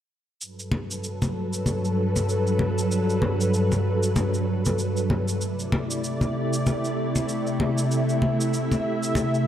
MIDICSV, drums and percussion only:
0, 0, Header, 1, 2, 480
1, 0, Start_track
1, 0, Key_signature, 1, "major"
1, 0, Tempo, 625000
1, 313, Time_signature, 4, 2, 24, 8
1, 7274, End_track
2, 0, Start_track
2, 0, Title_t, "Drums"
2, 318, Note_on_c, 9, 82, 48
2, 395, Note_off_c, 9, 82, 0
2, 457, Note_on_c, 9, 82, 27
2, 534, Note_off_c, 9, 82, 0
2, 550, Note_on_c, 9, 63, 72
2, 626, Note_off_c, 9, 63, 0
2, 698, Note_on_c, 9, 82, 54
2, 775, Note_off_c, 9, 82, 0
2, 798, Note_on_c, 9, 82, 45
2, 875, Note_off_c, 9, 82, 0
2, 937, Note_on_c, 9, 63, 64
2, 939, Note_on_c, 9, 82, 28
2, 1014, Note_off_c, 9, 63, 0
2, 1016, Note_off_c, 9, 82, 0
2, 1177, Note_on_c, 9, 82, 58
2, 1254, Note_off_c, 9, 82, 0
2, 1274, Note_on_c, 9, 63, 74
2, 1281, Note_on_c, 9, 82, 49
2, 1351, Note_off_c, 9, 63, 0
2, 1358, Note_off_c, 9, 82, 0
2, 1420, Note_on_c, 9, 82, 28
2, 1497, Note_off_c, 9, 82, 0
2, 1659, Note_on_c, 9, 63, 51
2, 1660, Note_on_c, 9, 82, 59
2, 1736, Note_off_c, 9, 63, 0
2, 1737, Note_off_c, 9, 82, 0
2, 1761, Note_on_c, 9, 82, 47
2, 1838, Note_off_c, 9, 82, 0
2, 1898, Note_on_c, 9, 82, 28
2, 1975, Note_off_c, 9, 82, 0
2, 1991, Note_on_c, 9, 63, 71
2, 2068, Note_off_c, 9, 63, 0
2, 2138, Note_on_c, 9, 82, 59
2, 2215, Note_off_c, 9, 82, 0
2, 2240, Note_on_c, 9, 82, 49
2, 2317, Note_off_c, 9, 82, 0
2, 2379, Note_on_c, 9, 82, 30
2, 2456, Note_off_c, 9, 82, 0
2, 2471, Note_on_c, 9, 63, 85
2, 2548, Note_off_c, 9, 63, 0
2, 2617, Note_on_c, 9, 82, 58
2, 2694, Note_off_c, 9, 82, 0
2, 2718, Note_on_c, 9, 82, 49
2, 2795, Note_off_c, 9, 82, 0
2, 2855, Note_on_c, 9, 63, 54
2, 2856, Note_on_c, 9, 82, 32
2, 2932, Note_off_c, 9, 63, 0
2, 2933, Note_off_c, 9, 82, 0
2, 3096, Note_on_c, 9, 82, 58
2, 3173, Note_off_c, 9, 82, 0
2, 3195, Note_on_c, 9, 63, 73
2, 3196, Note_on_c, 9, 82, 48
2, 3272, Note_off_c, 9, 63, 0
2, 3273, Note_off_c, 9, 82, 0
2, 3335, Note_on_c, 9, 82, 29
2, 3412, Note_off_c, 9, 82, 0
2, 3575, Note_on_c, 9, 82, 58
2, 3582, Note_on_c, 9, 63, 57
2, 3652, Note_off_c, 9, 82, 0
2, 3659, Note_off_c, 9, 63, 0
2, 3677, Note_on_c, 9, 82, 46
2, 3754, Note_off_c, 9, 82, 0
2, 3816, Note_on_c, 9, 82, 28
2, 3893, Note_off_c, 9, 82, 0
2, 3917, Note_on_c, 9, 63, 80
2, 3993, Note_off_c, 9, 63, 0
2, 4057, Note_on_c, 9, 82, 56
2, 4133, Note_off_c, 9, 82, 0
2, 4158, Note_on_c, 9, 82, 49
2, 4235, Note_off_c, 9, 82, 0
2, 4297, Note_on_c, 9, 82, 31
2, 4374, Note_off_c, 9, 82, 0
2, 4395, Note_on_c, 9, 63, 84
2, 4472, Note_off_c, 9, 63, 0
2, 4537, Note_on_c, 9, 82, 58
2, 4614, Note_off_c, 9, 82, 0
2, 4639, Note_on_c, 9, 82, 52
2, 4716, Note_off_c, 9, 82, 0
2, 4770, Note_on_c, 9, 63, 68
2, 4779, Note_on_c, 9, 82, 29
2, 4847, Note_off_c, 9, 63, 0
2, 4856, Note_off_c, 9, 82, 0
2, 5017, Note_on_c, 9, 82, 62
2, 5094, Note_off_c, 9, 82, 0
2, 5119, Note_on_c, 9, 63, 78
2, 5120, Note_on_c, 9, 82, 51
2, 5196, Note_off_c, 9, 63, 0
2, 5197, Note_off_c, 9, 82, 0
2, 5258, Note_on_c, 9, 82, 30
2, 5335, Note_off_c, 9, 82, 0
2, 5496, Note_on_c, 9, 63, 58
2, 5497, Note_on_c, 9, 82, 62
2, 5573, Note_off_c, 9, 63, 0
2, 5574, Note_off_c, 9, 82, 0
2, 5597, Note_on_c, 9, 82, 52
2, 5674, Note_off_c, 9, 82, 0
2, 5737, Note_on_c, 9, 82, 29
2, 5814, Note_off_c, 9, 82, 0
2, 5836, Note_on_c, 9, 63, 90
2, 5913, Note_off_c, 9, 63, 0
2, 5976, Note_on_c, 9, 82, 65
2, 6052, Note_off_c, 9, 82, 0
2, 6078, Note_on_c, 9, 82, 52
2, 6154, Note_off_c, 9, 82, 0
2, 6216, Note_on_c, 9, 82, 28
2, 6293, Note_off_c, 9, 82, 0
2, 6312, Note_on_c, 9, 63, 81
2, 6389, Note_off_c, 9, 63, 0
2, 6457, Note_on_c, 9, 82, 58
2, 6534, Note_off_c, 9, 82, 0
2, 6556, Note_on_c, 9, 82, 52
2, 6633, Note_off_c, 9, 82, 0
2, 6694, Note_on_c, 9, 63, 60
2, 6697, Note_on_c, 9, 82, 30
2, 6770, Note_off_c, 9, 63, 0
2, 6774, Note_off_c, 9, 82, 0
2, 6936, Note_on_c, 9, 82, 57
2, 7013, Note_off_c, 9, 82, 0
2, 7029, Note_on_c, 9, 63, 80
2, 7038, Note_on_c, 9, 82, 49
2, 7106, Note_off_c, 9, 63, 0
2, 7114, Note_off_c, 9, 82, 0
2, 7178, Note_on_c, 9, 82, 31
2, 7254, Note_off_c, 9, 82, 0
2, 7274, End_track
0, 0, End_of_file